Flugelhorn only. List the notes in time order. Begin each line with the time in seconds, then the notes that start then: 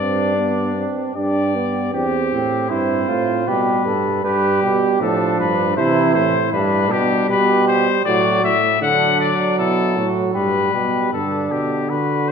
Already playing: D4
1.16 G4
1.93 G4
2.32 C4
2.70 E4
3.09 F4
3.48 G4
3.85 A4
4.24 B4
4.63 G4
5.01 D4
5.77 E4
6.54 D4
7.30 G4
8.06 F#4
8.82 D4
9.59 E4
9.97 F#4
10.35 G4
10.74 G4
11.13 D4
11.90 F#4